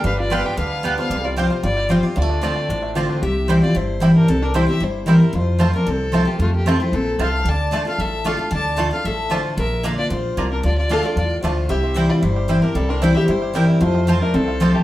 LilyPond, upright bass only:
\new Staff \with { instrumentName = "Upright bass" } { \clef bass \time 4/4 \key c \mixolydian \tempo 4 = 227 g,,2 d,2 | c,2 g,,2 | d,2 a,,2 | c,2 g,,2 |
c,2 g,,2 | f,2 c,2 | f,2 bes,,4 c,4 | d,2 a,,2 |
d,2 a,,2 | bes,,2 bes,,4 c,4 | d,2 e,4 d,4 | c,2 g,,2 |
c,2 g,,2 | f,2 c,2 | }